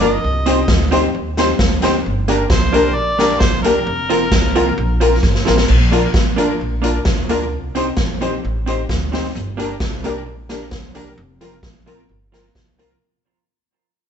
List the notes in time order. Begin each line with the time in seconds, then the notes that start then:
Already playing: G1
0.00 A#3 D4 F4 A#4, closed hi-hat
0.05 D#5
0.24 C2
0.46 C4 D#4 G4 C5, closed hi-hat
0.68 D2, kick, snare
0.91 C4 D#4 G4 C5, closed hi-hat
1.15 D#2, muted hollow-body jazz guitar stroke
1.37 C4 D#4 G4 C5, snare, closed hi-hat
1.59 D2, kick, snare
1.82 C4 D#4 G4 C5, snare, closed hi-hat
2.06 G1
2.28 A#3 D4 G4 A#4, closed hi-hat
2.50 C2 C5, kick, snare
2.73 A#3 D4 G4 A#4, closed hi-hat
2.95 A#1 D5, muted hollow-body jazz guitar stroke
3.19 A#3 D4 G4 A#4, snare, closed hi-hat
3.39 C2 G4 A#4 C5, muted hollow-body jazz guitar stroke, kick, snare
3.63 A#3 D4 G4 A#4, closed hi-hat
3.87 F1
4.10 F3 A#3 C4 F4 A#4, closed hi-hat
4.32 C2, kick, snare
4.55 F3 A#3 C4 F4 A#4, closed hi-hat
4.78 A#1, muted hollow-body jazz guitar stroke
5.00 F3 A#3 C4 F4 A#4, closed hi-hat
5.23 G1, kick, snare
5.35 snare
5.45 A1 F3 A#3 C4 F4 A#4, snare
5.58 snare
5.68 A#1, crash
5.91 A#3 D4 F4 A#4, closed hi-hat
6.14 A1, kick, snare
6.36 A#3 D4 F4 A#4, closed hi-hat
6.59 A#1, muted hollow-body jazz guitar stroke
6.82 A#3 D4 F4 A#4, closed hi-hat
7.05 D2, kick, snare
7.29 A#3 D4 F4 A#4, closed hi-hat
7.53 C2
7.75 C4 D#4 G4 C5, closed hi-hat
7.97 A#1, kick, snare
8.21 C4 D#4 G4 C5, closed hi-hat
8.43 A1, muted hollow-body jazz guitar stroke
8.66 C4 D#4 G4 C5, closed hi-hat
8.89 D2, kick, snare
9.12 C4 D#4 G4 C5, snare, open hi-hat
9.35 G1, hi-hat pedal
9.57 A#3 D4 G4 A#4, closed hi-hat
9.80 C2, kick, snare
10.04 A#3 D4 G4 A#4, closed hi-hat
10.25 A#1, muted hollow-body jazz guitar stroke
10.49 A#3 D4 G4 A#4, snare, closed hi-hat
10.71 C2, kick, snare
10.95 A#3 D4 G4 A#4, closed hi-hat
11.18 F1
11.41 F3 A#3 C4 F4 A#4, closed hi-hat
11.63 A#1, kick, snare
11.86 F3 A#3 C4 F4 A#4, closed hi-hat
12.09 G1, muted hollow-body jazz guitar stroke
12.32 F3 A#3 C4 F4 A#4, snare, closed hi-hat
12.55 C2, kick, snare
12.78 F3 A#3 C4 F4 A#4, closed hi-hat